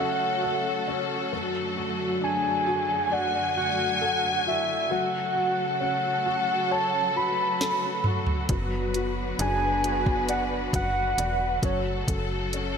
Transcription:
Already playing: string section C#3 F#3 A3 F#4 A4, grand piano F#3 A4
0.00 grand piano C#4, soft synth lead F#5
0.43 grand piano A4
0.88 grand piano C#4
1.32 string section F#2 D3 F#3, grand piano F#3
1.77 grand piano F#4
2.21 grand piano D4, soft synth lead G#5
2.67 grand piano F#4
3.12 grand piano D5, soft synth lead F#5, string section G#5
3.57 grand piano F#4, soft synth lead F#5
4.01 grand piano A4
4.46 grand piano F#4, soft synth lead E5
4.91 string section C#3 F#3 F#4 A4, grand piano F#3, soft synth lead F#5
5.35 grand piano F#4
5.80 grand piano C#4, soft synth lead F#5
6.26 grand piano F#4
6.71 grand piano C#5, soft synth lead A5
7.16 grand piano F#4, soft synth lead B5
7.61 grand piano A4, snare
8.04 grand piano F#4, mid tom
8.26 floor tom
8.49 fm bass F#1, string section D3 B3 B4, grand piano F#3, kick, closed hi-hat
8.94 grand piano F#4, closed hi-hat
9.39 fm bass F#1, grand piano D4, soft synth lead G#5, closed hi-hat
9.84 grand piano F#4, closed hi-hat
10.06 kick
10.29 grand piano D5, soft synth lead F#5, closed hi-hat
10.73 fm bass F#1, grand piano F#4, soft synth lead F#5, kick, closed hi-hat
11.18 fm bass E1, grand piano D5, closed hi-hat
11.62 fm bass F#1, string section C#3 F#3 A3 A4, grand piano F#3, soft synth lead C#5, kick, closed hi-hat
12.08 fm bass F#1, grand piano A4, kick, closed hi-hat
12.53 grand piano C#4, closed hi-hat

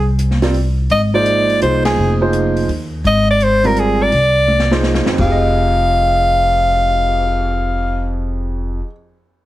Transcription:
Already playing: upright bass C2
0.19 closed hi-hat
0.31 snare
0.42 grand piano G3 C4 F4 A#4 D5, snare, open hi-hat
0.54 open hi-hat
0.90 upright bass G#1, soprano saxophone D#5, open hi-hat
1.14 grand piano F3 A#3 D#4 G#4 C5, soprano saxophone D5
1.26 closed hi-hat
1.49 open hi-hat
1.61 upright bass C2, grand piano F3 A#3 D#4 G#4 C5, soprano saxophone C5, closed hi-hat
1.85 soprano saxophone G#4, snare, ride
1.97 upright bass F1
2.21 grand piano F3 A#3 D#4 G#4 C5
2.33 closed hi-hat
2.57 open hi-hat
2.68 upright bass D#2, open hi-hat
3.04 upright bass G#1, soprano saxophone D#5, open hi-hat
3.30 soprano saxophone D5
3.40 soprano saxophone C5, closed hi-hat
3.64 grand piano G3 C4 F4 A#4 D5, soprano saxophone A#4, open hi-hat
3.76 soprano saxophone G#4, closed hi-hat
4.02 soprano saxophone D5
4.12 upright bass C2, open hi-hat
4.48 high tom
4.59 snare
4.71 grand piano F3 A#3 D#4 G#4 C5, snare
4.83 snare
4.95 snare
5.06 grand piano F2, muted upright bass stroke, snare
5.12 grand piano F3
5.18 upright bass F1, grand piano G4, soprano saxophone F5, kick, crash
5.25 grand piano G#4
5.31 grand piano D#5
5.42 cymbal swell

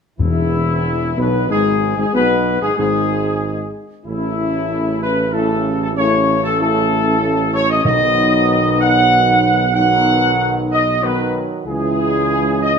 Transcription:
0.19 tuba E1, trombone section E2, timpani E2, french horn section E3, trumpet section E4
1.17 tuba B1, trombone section B2, french horn section B3, trumpet section B4
1.49 tuba G#1, trombone section G#2, french horn section G#3, trumpet section G#4
1.97 tuba G#1, trombone section G#2, french horn section G#3, trumpet section G#4
2.13 tuba B1, trombone section B2, french horn section B3, trumpet section B4
2.61 tuba G#1, trombone section G#2, french horn section G#3, trumpet section G#4
2.77 tuba G#1, trombone section G#2, french horn section G#3, trumpet section G#4
4.04 tuba A1, trombone section C#3 A3, french horn section C#4 E4, trumpet section E4
5.02 trumpet section B4
5.32 trombone section C#3 A3, french horn section C#4 E4, trumpet section A4
5.81 trumpet section A4
5.96 trombone section C#3 A3, french horn section C#4 E4, trumpet section C#5
6.44 trumpet section A4
6.59 trombone section C#3 A3, french horn section C#4 E4, trumpet section A4
7.21 trombone section A3
7.53 trumpet section C#5
7.70 trumpet section D#5
7.84 tuba B1, timpani B2, trombone section D#3 F#3, french horn section B3 D#4, trumpet section D#5
8.80 trumpet section F#5
9.74 trombone section D#3 F#3, french horn section B3 D#4, trumpet section F#5
10.71 trumpet section D#5
11.01 trombone section D#3 F#3, french horn section B3 D#4, trumpet section B4
11.65 tuba C#2, trombone section C#3 E3, french horn section G#3 E4, trumpet section G#4
12.62 trumpet section D#5

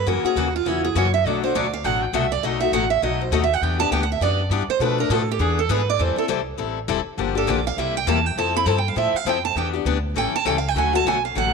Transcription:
0.06 upright bass F#2, steel-string acoustic guitar C#3 E3 A#3 C#4 F#4 A#4
0.24 steel-string acoustic guitar A#3 C#4 F#4 G#4, muted upright bass stroke
0.36 upright bass D#2, steel-string acoustic guitar C#3 E3 A#3 C#4 F#4
0.56 steel-string acoustic guitar F4
0.65 upright bass E2, steel-string acoustic guitar C#3 E3 A#3 C#4 E4 F#4
0.84 steel-string acoustic guitar G#4
0.95 upright bass F#2, steel-string acoustic guitar C#3 E3 A#3 C#4 F#4 C#5
1.14 steel-string acoustic guitar E5
1.24 upright bass B1, steel-string acoustic guitar B2 F#3 A3 D4 F#4 D5
1.43 steel-string acoustic guitar A3 D4 F#4 C5
1.54 upright bass D2, steel-string acoustic guitar B2 F#3 A3 D4 F#4 D5
1.74 steel-string acoustic guitar F5
1.84 upright bass A1, steel-string acoustic guitar B2 F#3 A3 D4 F#4 F#5
2.03 steel-string acoustic guitar G5
2.13 upright bass C2, steel-string acoustic guitar B2 F#3 A3 D4 F#4 E5
2.32 steel-string acoustic guitar D5
2.42 upright bass B1, steel-string acoustic guitar B2 F#3 A3 D#4 F#4 D#5
2.60 steel-string acoustic guitar A3 D#4 F#4 E5
2.72 upright bass A1, steel-string acoustic guitar B2 F#3 A3 D#4 F#4 F#5
2.90 steel-string acoustic guitar E5
3.02 upright bass B1, steel-string acoustic guitar B2 F#3 A3 D#4 F#4 D#5
3.21 steel-string acoustic guitar C5
3.31 upright bass D#2, steel-string acoustic guitar B2 F#3 A3 D#4 F#4 D#5
3.44 steel-string acoustic guitar E5
3.53 steel-string acoustic guitar F#5
3.61 upright bass E2, steel-string acoustic guitar E3 B3 D4 G4 G5
3.79 steel-string acoustic guitar B3 D4 G4 A5
3.91 upright bass D2, steel-string acoustic guitar E3 B3 D4 G4 G5
4.03 steel-string acoustic guitar F#5
4.12 steel-string acoustic guitar E5
4.20 upright bass F#2, steel-string acoustic guitar E3 B3 D4 G4 D5
4.50 upright bass G2, steel-string acoustic guitar E3 B3 D4 G4
4.68 steel-string acoustic guitar C5, muted upright bass stroke
4.80 upright bass B2, steel-string acoustic guitar B2 F3 A3 D4 A4 B4
4.98 steel-string acoustic guitar A3 D4 A4 A#4
5.10 upright bass A2, steel-string acoustic guitar B2 F3 A3 D4 A4
5.31 steel-string acoustic guitar G4
5.39 upright bass E2, steel-string acoustic guitar E3 B3 D4 G#4
5.59 steel-string acoustic guitar A4
5.69 upright bass G#2, steel-string acoustic guitar E3 B3 D4 G#4 B4
5.90 steel-string acoustic guitar D5
5.99 upright bass E2, steel-string acoustic guitar E3 G3 C4 E4 A4 C5
6.16 steel-string acoustic guitar C4 E4 A4, muted upright bass stroke
6.28 upright bass C2, steel-string acoustic guitar E3 G3 C4 E4 A4
6.58 upright bass A1, steel-string acoustic guitar E3 G3 C4 E4 A4
6.88 upright bass E1, steel-string acoustic guitar E3 G3 C4 E4 A4
7.06 muted upright bass stroke
7.17 upright bass G1, steel-string acoustic guitar D3 F3 A#3 D4 G4
7.35 steel-string acoustic guitar A#3 D4 G4 A4
7.47 upright bass A#1, steel-string acoustic guitar D3 F3 A#3 D4 G4 D5
7.67 steel-string acoustic guitar F5
7.77 upright bass C2, steel-string acoustic guitar C3 G3 A#3 E4 G4 E5
7.97 steel-string acoustic guitar G5
8.07 upright bass E2, steel-string acoustic guitar C3 G3 A#3 E4 G4 A5
8.26 steel-string acoustic guitar G5
8.36 upright bass F2, steel-string acoustic guitar F3 C4 E4 A4 A5
8.55 steel-string acoustic guitar C4 E4 A4 B5
8.66 upright bass G2, steel-string acoustic guitar F3 C4 E4 A4 A5
8.78 steel-string acoustic guitar G5
8.88 steel-string acoustic guitar F5
8.96 upright bass A2, steel-string acoustic guitar F3 C4 E4 A4 E5
9.14 steel-string acoustic guitar F5, muted upright bass stroke
9.25 upright bass F2, steel-string acoustic guitar F3 C4 E4 A4 G5
9.45 steel-string acoustic guitar A5
9.55 upright bass E2, steel-string acoustic guitar E3 B3 D4 G4 G5
9.73 steel-string acoustic guitar B3 D4 G4
9.85 upright bass D2, steel-string acoustic guitar E3 B3 D4 G4
10.14 upright bass A1, steel-string acoustic guitar E3 G3 C#4 E4 A4 G5
10.33 steel-string acoustic guitar A5, muted upright bass stroke
10.45 upright bass C#2, steel-string acoustic guitar E3 G3 C#4 E4 A4 G5
10.58 steel-string acoustic guitar F5
10.68 steel-string acoustic guitar G5
10.75 upright bass D2, steel-string acoustic guitar D3 F#3 A3 C#4 F#4 G#5
10.93 steel-string acoustic guitar A3 C#4 F#4 A5
11.04 upright bass B1, steel-string acoustic guitar D3 F#3 A3 C#4 F#4 G#5
11.25 steel-string acoustic guitar F5
11.35 upright bass A1, steel-string acoustic guitar D3 F#3 A3 C#4 F#4 F#5

